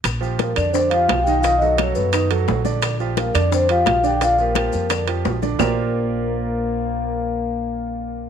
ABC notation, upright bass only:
X:1
M:4/4
L:1/8
Q:1/4=173
K:Bb
V:1 name="Upright bass" clef=bass
B,,,3 F,,3 _C,,2- | _C,,3 ^F,,3 B,,,2- | B,,,3 F,,3 B,,,2- | B,,,3 F,,3 B,,,2 |
B,,,8- | B,,,8 |]